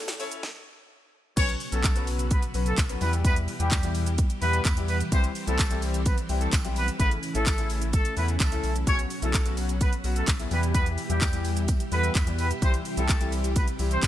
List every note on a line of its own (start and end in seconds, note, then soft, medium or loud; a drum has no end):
0.00 0.10 E2 loud
0.00 0.42 C#3 medium
0.00 0.39 E3 medium
0.00 0.42 A3 medium
0.00 0.39 E4 medium
0.00 0.42 A4 medium
0.08 snare loud
0.08 closed hi-hat medium
0.08 shaker medium
0.19 0.29 A1 loud
0.19 0.43 C#4 medium
0.19 0.43 E4 medium
0.19 0.43 A4 medium
0.19 0.43 C#5 loud
0.19 open hi-hat medium
0.19 tambourine soft
0.19 shaker medium
0.32 closed hi-hat medium
0.32 shaker medium
0.43 kick loud
0.43 snare medium
1.37 1.56 B1 loud
1.37 1.54 F#3 medium
1.37 3.00 F#3 medium
1.37 1.54 B3 medium
1.37 1.54 C#4 medium
1.37 1.47 C#4 medium
1.37 1.54 F#4 medium
1.37 1.54 B4 medium
1.37 1.47 C#5 loud
1.37 kick loud
1.37 closed hi-hat medium
1.37 crash loud
1.37 tambourine medium
1.37 shaker medium
1.49 closed hi-hat soft
1.49 shaker medium
1.60 open hi-hat medium
1.60 tambourine soft
1.60 shaker medium
1.72 2.37 B1 loud
1.72 1.83 F#3 medium
1.72 2.06 A3 medium
1.72 1.83 B3 medium
1.72 1.83 C#4 medium
1.72 1.83 F#4 medium
1.72 2.05 A4 medium
1.72 1.83 A4 medium
1.72 closed hi-hat medium
1.72 shaker medium
1.84 kick loud
1.84 clap loud
1.84 closed hi-hat medium
1.84 tambourine medium
1.84 shaker medium
1.95 2.23 F#3 medium
1.95 2.23 B3 medium
1.95 2.23 C#4 medium
1.95 2.23 F#4 medium
1.95 2.23 B4 medium
1.95 closed hi-hat medium
1.95 shaker medium
2.07 open hi-hat medium
2.07 tambourine soft
2.07 shaker medium
2.19 closed hi-hat medium
2.19 shaker medium
2.31 2.41 B3 medium
2.31 2.40 B4 medium
2.31 kick loud
2.31 closed hi-hat medium
2.31 shaker medium
2.42 closed hi-hat medium
2.42 shaker medium
2.54 2.73 B1 loud
2.54 2.71 F#3 medium
2.54 2.71 B3 medium
2.54 2.71 C#4 medium
2.54 2.71 F#4 medium
2.54 2.71 B4 medium
2.54 open hi-hat medium
2.54 tambourine medium
2.54 shaker medium
2.66 2.76 A3 medium
2.66 2.76 A4 medium
2.66 closed hi-hat soft
2.66 shaker medium
2.77 2.96 B1 loud
2.77 kick loud
2.77 clap loud
2.77 closed hi-hat medium
2.77 tambourine medium
2.77 shaker medium
2.89 3.01 F#3 medium
2.89 3.00 B3 medium
2.89 3.01 C#4 medium
2.89 3.01 F#4 medium
2.89 3.01 B4 medium
2.89 closed hi-hat medium
2.89 shaker medium
3.01 3.48 E2 loud
3.01 5.10 B2 medium
3.01 3.48 E3 medium
3.01 8.83 E3 medium
3.01 3.48 G3 medium
3.01 5.10 G3 medium
3.01 3.48 B3 medium
3.01 3.11 B3 medium
3.01 8.83 E4 medium
3.01 3.48 E4 medium
3.01 6.96 G4 medium
3.01 3.48 G4 medium
3.01 3.11 B4 medium
3.01 open hi-hat medium
3.01 tambourine medium
3.01 shaker soft
3.13 closed hi-hat medium
3.13 shaker medium
3.25 3.35 B3 medium
3.25 3.34 B4 loud
3.25 kick loud
3.25 closed hi-hat medium
3.25 tambourine medium
3.25 shaker medium
3.36 closed hi-hat medium
3.36 shaker soft
3.48 open hi-hat medium
3.48 shaker medium
3.60 4.25 E2 loud
3.60 3.71 E3 medium
3.60 3.71 G3 medium
3.60 3.93 G3 medium
3.60 3.71 B3 medium
3.60 3.71 E4 medium
3.60 3.93 G4 medium
3.60 3.71 G4 medium
3.60 closed hi-hat medium
3.60 shaker medium
3.71 kick loud
3.71 clap loud
3.71 closed hi-hat medium
3.71 tambourine medium
3.71 shaker medium
3.83 4.11 E3 medium
3.83 4.11 G3 medium
3.83 4.11 B3 medium
3.83 4.11 E4 medium
3.83 4.11 G4 medium
3.83 closed hi-hat medium
3.83 shaker medium
3.95 open hi-hat medium
3.95 tambourine medium
3.95 shaker medium
4.06 closed hi-hat medium
4.06 shaker medium
4.18 kick loud
4.18 closed hi-hat medium
4.18 shaker medium
4.30 closed hi-hat medium
4.30 shaker medium
4.42 4.61 E2 loud
4.42 4.58 E3 medium
4.42 4.58 G3 medium
4.42 4.58 B3 medium
4.42 4.62 B3 medium
4.42 4.59 E4 medium
4.42 4.59 G4 medium
4.42 4.61 B4 medium
4.42 open hi-hat medium
4.42 tambourine soft
4.42 shaker medium
4.53 closed hi-hat soft
4.53 shaker medium
4.65 5.03 E2 loud
4.65 kick loud
4.65 clap loud
4.65 closed hi-hat medium
4.65 tambourine medium
4.65 shaker medium
4.77 4.94 E3 medium
4.77 4.94 G3 medium
4.77 4.94 B3 medium
4.77 4.94 E4 medium
4.77 4.94 G4 medium
4.77 closed hi-hat medium
4.77 shaker medium
4.88 4.99 B3 medium
4.88 4.98 B4 medium
4.88 open hi-hat medium
4.88 tambourine medium
4.88 shaker soft
5.00 closed hi-hat medium
5.00 shaker medium
5.12 5.31 C2 loud
5.12 5.29 E3 medium
5.12 5.29 G3 medium
5.12 6.98 G3 medium
5.12 5.29 C4 medium
5.12 6.98 C4 medium
5.12 5.22 C4 medium
5.12 5.29 E4 medium
5.12 5.29 G4 medium
5.12 5.22 C5 loud
5.12 kick loud
5.12 closed hi-hat medium
5.12 tambourine medium
5.12 shaker medium
5.24 closed hi-hat soft
5.24 shaker soft
5.35 open hi-hat medium
5.35 tambourine soft
5.35 shaker medium
5.47 6.13 C2 medium
5.47 5.58 E3 medium
5.47 5.58 G3 medium
5.47 5.81 A3 medium
5.47 5.58 C4 medium
5.47 5.58 E4 medium
5.47 5.58 G4 medium
5.47 5.80 A4 medium
5.47 closed hi-hat medium
5.47 shaker medium
5.59 kick loud
5.59 clap loud
5.59 closed hi-hat medium
5.59 tambourine medium
5.59 shaker medium
5.71 5.98 E3 medium
5.71 5.98 G3 medium
5.71 5.98 C4 medium
5.71 5.98 E4 medium
5.71 5.99 G4 medium
5.71 closed hi-hat medium
5.71 shaker medium
5.82 open hi-hat medium
5.82 tambourine medium
5.82 shaker medium
5.94 closed hi-hat medium
5.94 shaker medium
6.06 6.16 B3 medium
6.06 6.16 B4 medium
6.06 kick loud
6.06 closed hi-hat medium
6.06 tambourine soft
6.06 shaker medium
6.18 closed hi-hat medium
6.18 shaker medium
6.29 6.48 C2 loud
6.29 6.46 E3 medium
6.29 6.46 G3 medium
6.29 6.46 C4 medium
6.29 6.46 E4 medium
6.29 6.46 G4 medium
6.29 open hi-hat medium
6.29 tambourine soft
6.29 shaker medium
6.41 6.51 A3 medium
6.41 6.51 A4 medium
6.41 closed hi-hat medium
6.41 shaker medium
6.52 6.90 B1 loud
6.52 kick loud
6.52 clap loud
6.52 closed hi-hat medium
6.52 tambourine medium
6.52 shaker medium
6.64 6.81 E3 medium
6.64 6.81 G3 medium
6.64 6.81 C4 medium
6.64 6.81 E4 medium
6.64 6.81 G4 medium
6.64 closed hi-hat medium
6.64 shaker medium
6.76 6.86 B3 medium
6.76 6.86 B4 medium
6.76 open hi-hat medium
6.76 tambourine medium
6.76 shaker soft
6.88 closed hi-hat medium
6.88 shaker medium
6.99 7.18 A1 loud
6.99 7.16 C#3 medium
6.99 7.16 E3 medium
6.99 7.16 A3 medium
6.99 7.10 B3 medium
6.99 7.16 C#4 medium
6.99 7.16 E4 medium
6.99 7.09 B4 loud
6.99 kick loud
6.99 closed hi-hat medium
6.99 tambourine medium
6.99 shaker medium
7.11 closed hi-hat soft
7.11 shaker soft
7.23 open hi-hat medium
7.23 tambourine soft
7.23 shaker medium
7.35 8.00 A1 medium
7.35 7.46 C#3 medium
7.35 7.46 E3 medium
7.35 7.46 A3 medium
7.35 7.68 A3 medium
7.35 7.46 C#4 medium
7.35 7.46 E4 medium
7.35 7.68 A4 medium
7.35 closed hi-hat medium
7.35 shaker medium
7.46 kick loud
7.46 clap loud
7.46 closed hi-hat medium
7.46 tambourine medium
7.46 shaker medium
7.58 7.86 C#3 medium
7.58 7.86 E3 medium
7.58 7.86 A3 medium
7.58 7.86 C#4 medium
7.58 7.86 E4 medium
7.58 closed hi-hat medium
7.58 shaker medium
7.70 open hi-hat medium
7.70 tambourine soft
7.70 shaker medium
7.82 closed hi-hat medium
7.82 shaker medium
7.93 8.13 A3 medium
7.93 8.13 A4 medium
7.93 kick loud
7.93 closed hi-hat medium
7.93 tambourine soft
7.93 shaker medium
8.05 closed hi-hat medium
8.05 shaker medium
8.17 8.38 E2 medium
8.17 8.33 C#3 medium
8.17 8.33 E3 medium
8.17 8.33 A3 medium
8.17 8.27 B3 medium
8.17 8.33 C#4 medium
8.17 8.34 E4 medium
8.17 8.27 B4 medium
8.17 open hi-hat medium
8.17 tambourine medium
8.17 shaker medium
8.28 closed hi-hat soft
8.28 shaker medium
8.40 8.61 C#2 medium
8.40 8.74 A3 medium
8.40 8.73 A4 medium
8.40 kick loud
8.40 clap loud
8.40 closed hi-hat medium
8.40 tambourine medium
8.40 shaker medium
8.52 8.68 C#3 medium
8.52 8.69 E3 medium
8.52 8.69 A3 medium
8.52 8.69 C#4 medium
8.52 8.69 E4 medium
8.52 closed hi-hat medium
8.52 shaker medium
8.64 8.85 B1 medium
8.64 open hi-hat medium
8.64 tambourine medium
8.64 shaker soft
8.76 closed hi-hat medium
8.76 shaker medium
8.87 9.06 B1 loud
8.87 12.58 B2 medium
8.87 9.04 C#3 medium
8.87 9.04 F#3 medium
8.87 10.49 F#3 medium
8.87 9.04 B3 medium
8.87 9.04 C#4 medium
8.87 8.97 C#4 medium
8.87 10.50 F#4 medium
8.87 9.04 F#4 medium
8.87 8.97 C#5 loud
8.87 kick loud
8.87 closed hi-hat medium
8.87 tambourine medium
8.87 shaker medium
8.99 closed hi-hat soft
8.99 shaker soft
9.10 open hi-hat medium
9.10 tambourine soft
9.10 shaker medium
9.22 9.88 B1 medium
9.22 9.33 C#3 medium
9.22 9.33 F#3 medium
9.22 9.56 A3 medium
9.22 9.33 B3 medium
9.22 9.33 C#4 medium
9.22 9.33 E4 medium
9.22 9.55 A4 medium
9.22 closed hi-hat medium
9.22 shaker medium
9.34 kick loud
9.34 clap loud
9.34 closed hi-hat medium
9.34 tambourine medium
9.34 shaker medium
9.45 9.73 C#3 medium
9.45 9.73 F#3 medium
9.45 9.73 B3 medium
9.45 9.73 C#4 medium
9.45 9.73 F#4 medium
9.45 closed hi-hat medium
9.45 shaker medium
9.57 open hi-hat medium
9.57 tambourine soft
9.57 shaker medium
9.69 closed hi-hat medium
9.69 shaker medium
9.81 9.91 B3 medium
9.81 9.91 B4 medium
9.81 kick loud
9.81 closed hi-hat medium
9.81 tambourine soft
9.81 shaker medium
9.93 closed hi-hat medium
9.93 shaker medium
10.04 10.23 B1 loud
10.04 10.21 C#3 medium
10.04 10.21 F#3 medium
10.04 10.21 B3 medium
10.04 10.21 C#4 medium
10.04 10.21 F#4 medium
10.04 open hi-hat medium
10.04 tambourine medium
10.04 shaker medium
10.16 10.26 A3 medium
10.16 10.26 A4 medium
10.16 closed hi-hat medium
10.16 shaker medium
10.27 10.46 B1 loud
10.27 kick loud
10.27 clap loud
10.27 closed hi-hat medium
10.27 tambourine medium
10.27 shaker medium
10.39 10.51 C#3 medium
10.39 10.51 F#3 medium
10.39 10.50 B3 medium
10.39 10.51 C#4 medium
10.39 10.50 E4 medium
10.39 closed hi-hat medium
10.39 shaker medium
10.51 10.98 E2 loud
10.51 10.98 E3 medium
10.51 14.07 E3 medium
10.51 10.98 G3 medium
10.51 12.60 G3 medium
10.51 10.98 B3 medium
10.51 10.61 B3 medium
10.51 14.07 E4 medium
10.51 10.98 E4 medium
10.51 14.07 G4 medium
10.51 10.98 G4 medium
10.51 10.61 B4 medium
10.51 open hi-hat medium
10.51 tambourine medium
10.51 shaker soft
10.63 closed hi-hat medium
10.63 shaker medium
10.74 10.85 B3 medium
10.74 10.84 B4 loud
10.74 kick loud
10.74 closed hi-hat medium
10.74 tambourine medium
10.74 shaker medium
10.86 closed hi-hat soft
10.86 shaker soft
10.98 open hi-hat medium
10.98 tambourine soft
10.98 shaker medium
11.09 11.75 E2 medium
11.09 11.21 E3 medium
11.09 11.21 G3 medium
11.09 11.43 G3 medium
11.09 11.21 B3 medium
11.09 11.21 E4 medium
11.09 11.43 G4 medium
11.09 11.21 G4 medium
11.09 closed hi-hat medium
11.09 shaker medium
11.21 kick loud
11.21 clap loud
11.21 closed hi-hat medium
11.21 tambourine medium
11.21 shaker medium
11.33 11.61 E3 medium
11.33 11.61 G3 medium
11.33 11.61 B3 medium
11.33 11.61 E4 medium
11.33 11.61 G4 medium
11.33 closed hi-hat medium
11.33 shaker medium
11.45 open hi-hat medium
11.45 tambourine soft
11.45 shaker medium
11.57 closed hi-hat medium
11.57 shaker medium
11.68 kick loud
11.68 closed hi-hat medium
11.68 tambourine soft
11.68 shaker medium
11.80 closed hi-hat medium
11.80 shaker medium
11.92 12.10 E2 loud
11.92 12.08 E3 medium
11.92 12.08 G3 medium
11.92 12.08 B3 medium
11.92 12.12 B3 medium
11.92 12.08 E4 medium
11.92 12.09 A4 medium
11.92 12.11 B4 medium
11.92 open hi-hat medium
11.92 tambourine medium
11.92 shaker medium
12.03 closed hi-hat medium
12.03 shaker medium
12.15 12.53 E2 loud
12.15 kick loud
12.15 clap loud
12.15 closed hi-hat medium
12.15 tambourine medium
12.15 shaker medium
12.27 12.43 E3 medium
12.27 12.43 G3 medium
12.27 12.44 B3 medium
12.27 12.44 E4 medium
12.27 12.44 G4 medium
12.27 closed hi-hat medium
12.27 shaker medium
12.39 12.49 B3 medium
12.39 12.48 B4 medium
12.39 open hi-hat medium
12.39 tambourine medium
12.39 shaker soft
12.51 closed hi-hat medium
12.51 shaker medium
12.62 12.81 C2 loud
12.62 12.79 E3 medium
12.62 12.79 G3 medium
12.62 14.07 G3 medium
12.62 12.79 C4 medium
12.62 12.72 C4 medium
12.62 12.79 E4 medium
12.62 12.79 G4 medium
12.62 12.72 C5 loud
12.62 kick loud
12.62 closed hi-hat medium
12.62 tambourine medium
12.62 shaker medium
12.74 closed hi-hat medium
12.74 shaker medium
12.85 open hi-hat medium
12.85 shaker medium
12.97 13.62 C2 medium
12.97 13.08 E3 medium
12.97 13.08 G3 medium
12.97 13.31 A3 medium
12.97 13.08 C4 medium
12.97 13.08 E4 medium
12.97 13.08 G4 medium
12.97 13.30 A4 medium
12.97 closed hi-hat medium
12.97 shaker medium
13.09 kick loud
13.09 clap loud
13.09 closed hi-hat medium
13.09 tambourine medium
13.09 shaker medium
13.21 13.48 E3 medium
13.21 13.48 G3 medium
13.21 13.48 C4 medium
13.21 13.48 E4 medium
13.21 13.49 G4 medium
13.21 closed hi-hat medium
13.21 shaker medium
13.32 open hi-hat medium
13.32 tambourine soft
13.32 shaker medium
13.44 closed hi-hat medium
13.44 shaker medium
13.56 13.66 B3 medium
13.56 13.66 B4 medium
13.56 kick loud
13.56 closed hi-hat medium
13.56 tambourine soft
13.56 shaker medium
13.68 closed hi-hat medium
13.68 shaker medium
13.79 13.98 C2 loud
13.79 13.96 E3 medium
13.79 13.96 G3 medium
13.79 13.96 C4 medium
13.79 13.96 E4 medium
13.79 13.96 G4 medium
13.79 open hi-hat medium
13.79 tambourine medium
13.79 shaker medium
13.91 14.01 C4 medium
13.91 14.01 C5 medium
13.91 closed hi-hat soft
13.91 shaker medium
14.02 14.07 C2 loud
14.02 kick loud
14.02 clap loud
14.02 closed hi-hat medium
14.02 tambourine medium
14.02 shaker medium